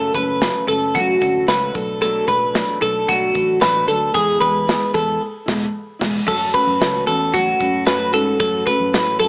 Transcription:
Already playing: F#1 F#2 C#3 F#3 A3 C#4 A4
0.14 F#1 F#3 A3 C#4 B4, kick, closed hi-hat
0.41 C#3 F#3 A3 C#4, snare, closed hi-hat
0.67 F#1 F#3 A3 C#4 A4, closed hi-hat
0.94 F#2 C#3 F#3 A3 C#4 F#4, kick, closed hi-hat
1.21 D2 F#3 A3 C#4, kick, closed hi-hat
1.47 C#2 C#3 F#3 A3 C#4 B4, snare, closed hi-hat
1.73 B1 F#3 A3 D4 A4, kick, closed hi-hat
2.00 B2 F#3 A3 D4 A4, closed hi-hat
2.27 B1 F#3 A3 D4 B4, kick, closed hi-hat
2.53 B2 F#3 A3 D4, snare, closed hi-hat
2.80 B1 F#3 A3 D4 A4, closed hi-hat
3.07 B1 B2 F#3 A3 D4 F#4, kick, closed hi-hat
3.33 A1 A3 D4, kick, closed hi-hat
3.37 F#3
3.60 A1 B2 F#3 A3 D4 B4, snare, closed hi-hat
3.86 D2 F#3 A3 D4 A4, closed hi-hat
4.14 E2 E3 G#3 B3 E4 G#4, kick, closed hi-hat
4.40 E2 G#3 B3 E4 B4, kick, closed hi-hat
4.66 E3 G#3 B3 E4, snare, closed hi-hat
4.93 E2 G#3 B3 E4 A4, kick, closed hi-hat
5.46 E1 G#3 B3 E4, kick, snare, crash
5.99 E1 G#3 B3 E4, kick, snare, crash
6.26 F#2 F#3 A3 C#4 F#4 A4, kick, crash
6.53 A3 C#4 F#4 B4, kick, closed hi-hat
6.67 F#2
6.80 C#2 F#3 A3 C#4 F#4, snare, closed hi-hat
7.06 E2 A3 C#4 F#4 A4, closed hi-hat
7.33 F#3 A3 C#4 F#4, kick, closed hi-hat
7.59 F#2 A3 C#4 F#4, kick, closed hi-hat
7.86 F#2 F#3 A3 C#4 F#4 B4, snare, closed hi-hat
8.11 G#2 A3 C#4 F#4 A4, closed hi-hat
8.39 F#2 F#3 A3 C#4 F#4 A4, kick, closed hi-hat
8.66 A3 C#4 F#4 B4, kick, closed hi-hat
8.80 F#2
8.93 A2 F#3 A3 C#4 F#4, snare, closed hi-hat
9.20 F#2 A3 C#4 F#4 A4, closed hi-hat

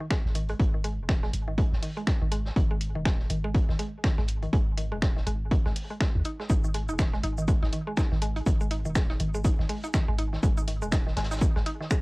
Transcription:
0.00 D#3
0.10 G#3, finger snap, kick, snare, closed hi-hat
0.25 G#1, snare
0.35 D#3, closed hi-hat
0.49 G#3, closed hi-hat
0.60 G#1, kick, closed hi-hat
0.74 D#3
0.84 G#3, closed hi-hat
0.98 D#1
1.09 D#3, finger snap, kick, snare, closed hi-hat
1.23 G#3, snare
1.33 G#1, closed hi-hat
1.48 D#3
1.58 G#3, kick, closed hi-hat
1.72 G#1, snare
1.83 D#3, closed hi-hat, open hi-hat
1.97 G#3, closed hi-hat
2.07 finger snap, kick, snare, closed hi-hat
2.21 G#1 D#3
2.32 G#3, closed hi-hat
2.45 snare
2.56 G#1 D#3, kick, closed hi-hat
2.71 G#3
2.81 closed hi-hat
2.95 D#1 D#3
3.05 G#3, finger snap, kick, snare, closed hi-hat
3.19 snare
3.30 G#1 D#3, closed hi-hat
3.44 G#3
3.54 kick, closed hi-hat
3.69 G#1 D#3, snare
3.79 G#3, closed hi-hat
4.04 D#3, finger snap, kick, snare, closed hi-hat
4.18 G#1 G#3, snare
4.28 closed hi-hat
4.42 D#3, closed hi-hat
4.53 G#1 G#3, kick, closed hi-hat
4.77 D#3, closed hi-hat
4.92 D#1 G#3
5.02 finger snap, kick, snare, closed hi-hat
5.17 D#3, snare
5.27 G#1 G#3, closed hi-hat
5.51 D#3, kick, closed hi-hat
5.65 G#1 G#3, snare
5.76 closed hi-hat, open hi-hat
5.90 G#3, closed hi-hat
6.00 G#3, finger snap, kick, snare, closed hi-hat
6.15 D#2
6.24 D#4, closed hi-hat
6.39 G#3, snare
6.50 G#1 D#4, kick, closed hi-hat, cabasa
6.64 D#3, cabasa
6.74 G#3, closed hi-hat
6.89 D#1 D#4, cabasa
6.99 D#3, finger snap, kick, snare, closed hi-hat, cabasa
7.13 G#3, snare
7.23 G#1 D#4, closed hi-hat
7.38 D#3, cabasa
7.48 G#3, kick, closed hi-hat, cabasa
7.63 G#1 D#4, snare
7.72 D#3, closed hi-hat
7.87 G#3
7.97 D#4, finger snap, kick, snare, closed hi-hat, cabasa
8.11 G#1 D#3, snare
8.21 G#3, closed hi-hat
8.36 D#4, closed hi-hat
8.46 G#1 D#3, kick, closed hi-hat, cabasa
8.61 G#3, cabasa
8.71 D#4, closed hi-hat
8.85 D#1 D#3, cabasa
8.95 G#3, finger snap, kick, snare, closed hi-hat, cabasa
9.09 D#4, snare
9.20 G#1 D#3, closed hi-hat
9.35 G#3, cabasa
9.45 D#4, kick, closed hi-hat, cabasa
9.59 G#1 D#3, snare
9.69 G#3, closed hi-hat, open hi-hat
9.84 D#4, closed hi-hat, cabasa
9.94 D#3, finger snap, kick, snare, closed hi-hat, cabasa
10.08 G#1 G#3
10.19 D#4, closed hi-hat
10.33 D#3, snare
10.43 G#1 G#3, kick, closed hi-hat, cabasa
10.58 D#4, cabasa
10.68 D#3, closed hi-hat
10.82 D#1 G#3, cabasa
10.92 D#4, finger snap, kick, snare, closed hi-hat, cabasa
11.07 D#3, snare
11.17 G#1 G#3, snare, closed hi-hat
11.23 snare, closed hi-hat
11.31 D#4, snare, closed hi-hat, cabasa
11.37 snare, closed hi-hat
11.41 D#3, kick, cabasa
11.56 G#1 G#3, snare
11.66 D#4, closed hi-hat
11.80 D#3, snare
11.90 G#3, finger snap, kick, closed hi-hat, cabasa

